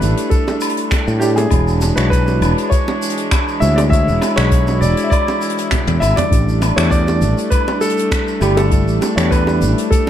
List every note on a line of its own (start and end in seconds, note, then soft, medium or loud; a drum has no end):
0.00 0.13 A1 loud
0.00 1.48 G3 medium
0.00 1.20 A3 medium
0.00 1.48 A3 medium
0.00 1.21 D4 medium
0.00 1.48 D4 medium
0.00 1.22 E4 medium
0.00 1.22 G4 medium
0.00 0.33 B4 loud
0.00 1.23 D5 loud
0.00 closed hi-hat soft
0.00 shaker medium
0.17 closed hi-hat medium
0.17 shaker medium
0.30 1.24 A4 medium
0.30 kick loud
0.30 closed hi-hat medium
0.30 shaker medium
0.48 high bongo medium
0.48 shaker soft
0.61 closed hi-hat medium
0.61 low woodblock medium
0.61 shaker medium
0.69 closed hi-hat medium
0.77 closed hi-hat medium
0.77 shaker soft
0.91 finger snap medium
0.91 kick loud
0.91 closed hi-hat medium
0.91 high bongo medium
0.91 shaker medium
1.08 1.45 A2 loud
1.08 shaker soft
1.20 1.48 A3 medium
1.20 1.48 D4 medium
1.20 1.48 E4 medium
1.20 1.25 G4 medium
1.20 1.49 G4 medium
1.20 1.49 D5 medium
1.20 shaker medium
1.36 1.99 G#4 medium
1.36 closed hi-hat medium
1.36 high bongo medium
1.36 shaker soft
1.50 1.90 E1 loud
1.50 6.28 E3 medium
1.50 1.93 G#3 medium
1.50 6.28 G#3 medium
1.50 1.93 D4 medium
1.50 3.89 D4 medium
1.50 1.94 E4 medium
1.50 1.94 F#4 medium
1.50 1.94 C#5 medium
1.50 kick loud
1.50 closed hi-hat medium
1.50 low woodblock medium
1.50 shaker medium
1.68 shaker soft
1.81 closed hi-hat medium
1.81 high bongo medium
1.81 shaker medium
1.96 2.43 B1 medium
1.96 2.11 G#3 medium
1.96 2.11 D4 medium
1.96 2.12 E4 medium
1.96 2.12 F#4 medium
1.96 2.01 B4 medium
1.96 2.12 C#5 loud
1.96 finger snap medium
1.96 closed hi-hat medium
1.96 shaker soft
2.10 2.73 B4 loud
2.10 kick medium
2.10 closed hi-hat medium
2.10 shaker medium
2.27 high bongo medium
2.27 shaker soft
2.41 2.53 E1 loud
2.41 closed hi-hat soft
2.41 low woodblock medium
2.41 shaker medium
2.58 closed hi-hat medium
2.58 shaker medium
2.70 3.63 C#5 medium
2.70 kick loud
2.70 closed hi-hat medium
2.70 shaker medium
2.88 high bongo medium
2.88 shaker soft
3.02 closed hi-hat medium
3.02 shaker medium
3.10 closed hi-hat medium
3.17 closed hi-hat medium
3.17 shaker soft
3.31 finger snap medium
3.31 kick loud
3.31 closed hi-hat medium
3.31 high bongo medium
3.31 low woodblock medium
3.31 shaker medium
3.48 shaker soft
3.60 4.09 D2 medium
3.60 3.88 G#3 medium
3.60 3.88 D4 medium
3.60 3.88 E4 medium
3.60 3.89 F#4 medium
3.60 3.89 C#5 medium
3.60 3.77 E5 loud
3.60 shaker medium
3.76 3.81 D5 medium
3.76 closed hi-hat medium
3.76 high bongo medium
3.76 shaker soft
3.90 4.33 G#3 medium
3.90 4.33 D4 medium
3.90 6.29 E4 medium
3.90 4.34 E4 medium
3.90 4.34 F#4 medium
3.90 4.35 C#5 medium
3.90 4.38 E5 loud
3.90 kick loud
3.90 closed hi-hat medium
3.90 shaker medium
4.08 4.18 E1 medium
4.08 shaker soft
4.22 closed hi-hat soft
4.22 high bongo medium
4.22 low woodblock medium
4.22 shaker medium
4.36 4.83 B1 loud
4.36 4.51 G#3 loud
4.36 4.52 D4 medium
4.36 4.52 E4 medium
4.36 4.52 F#4 medium
4.36 4.78 C#5 loud
4.36 4.53 C#5 loud
4.36 finger snap medium
4.36 closed hi-hat medium
4.36 shaker soft
4.52 kick medium
4.52 closed hi-hat medium
4.52 shaker medium
4.67 high bongo medium
4.67 shaker soft
4.81 4.93 E1 loud
4.81 5.05 D5 medium
4.81 closed hi-hat soft
4.81 shaker medium
4.97 closed hi-hat medium
4.97 shaker medium
5.04 5.11 E5 medium
5.10 6.04 D5 loud
5.10 kick loud
5.10 closed hi-hat medium
5.10 low woodblock medium
5.10 shaker medium
5.28 high bongo medium
5.28 shaker soft
5.41 closed hi-hat medium
5.41 shaker medium
5.49 closed hi-hat medium
5.58 closed hi-hat medium
5.58 shaker soft
5.71 finger snap medium
5.71 kick medium
5.71 closed hi-hat medium
5.71 high tom medium
5.71 high bongo medium
5.71 shaker medium
5.87 5.98 E2 medium
5.87 high tom medium
5.87 shaker soft
6.00 6.13 G#1 medium
6.00 6.17 E5 loud
6.00 closed hi-hat medium
6.00 low woodblock medium
6.00 shaker medium
6.16 6.79 D5 medium
6.16 closed hi-hat medium
6.16 mid tom medium
6.16 high bongo medium
6.16 shaker medium
6.30 6.70 A1 loud
6.30 10.10 G3 medium
6.30 6.73 A3 medium
6.30 10.10 A3 medium
6.30 6.73 D4 medium
6.30 10.10 D4 medium
6.30 6.74 E4 medium
6.30 6.74 G4 medium
6.30 6.75 D5 medium
6.30 kick loud
6.30 closed hi-hat medium
6.30 shaker medium
6.49 shaker soft
6.62 closed hi-hat soft
6.62 high bongo medium
6.62 low woodblock medium
6.62 shaker medium
6.76 7.23 E2 medium
6.76 6.91 A3 medium
6.76 6.92 D4 medium
6.76 6.92 E4 medium
6.76 6.92 G4 medium
6.76 6.92 C#5 medium
6.76 6.93 D5 loud
6.76 finger snap medium
6.76 closed hi-hat medium
6.76 shaker soft
6.90 7.53 D5 loud
6.90 kick loud
6.90 closed hi-hat medium
6.90 shaker medium
7.08 high bongo medium
7.08 shaker soft
7.22 7.33 A1 loud
7.22 closed hi-hat medium
7.22 shaker medium
7.38 closed hi-hat medium
7.38 shaker soft
7.50 7.82 B4 medium
7.50 kick loud
7.50 closed hi-hat medium
7.50 low woodblock medium
7.50 shaker medium
7.67 high bongo medium
7.67 shaker soft
7.81 8.43 A4 loud
7.81 closed hi-hat medium
7.81 shaker medium
7.89 closed hi-hat medium
7.97 closed hi-hat medium
7.97 shaker soft
8.12 finger snap medium
8.12 kick loud
8.12 closed hi-hat medium
8.12 high bongo medium
8.12 shaker medium
8.28 shaker soft
8.40 8.88 G1 medium
8.40 8.68 A3 medium
8.40 8.68 D4 medium
8.40 8.68 E4 medium
8.40 8.58 G4 medium
8.40 8.69 G4 medium
8.40 8.69 D5 medium
8.40 low woodblock medium
8.40 shaker medium
8.57 9.19 A4 medium
8.57 closed hi-hat medium
8.57 high bongo medium
8.57 shaker soft
8.70 9.13 A3 medium
8.70 9.13 D4 medium
8.70 9.14 E4 medium
8.70 9.14 G4 medium
8.70 9.15 D5 medium
8.70 kick loud
8.70 closed hi-hat medium
8.70 shaker medium
8.88 8.98 A1 medium
8.88 shaker soft
9.02 closed hi-hat soft
9.02 high bongo medium
9.02 shaker medium
9.16 9.63 E2 loud
9.16 9.31 A3 loud
9.16 9.31 D4 medium
9.16 9.32 E4 medium
9.16 9.32 G4 medium
9.16 9.32 C#5 medium
9.16 9.33 D5 loud
9.16 finger snap medium
9.16 closed hi-hat medium
9.16 shaker medium
9.31 9.93 B4 medium
9.31 kick loud
9.31 closed hi-hat medium
9.31 low woodblock medium
9.31 shaker medium
9.47 high bongo medium
9.47 shaker soft
9.61 9.73 A1 loud
9.61 closed hi-hat soft
9.61 shaker medium
9.78 closed hi-hat medium
9.78 shaker soft
9.91 10.10 A4 medium
9.91 kick loud
9.91 closed hi-hat medium
9.91 shaker medium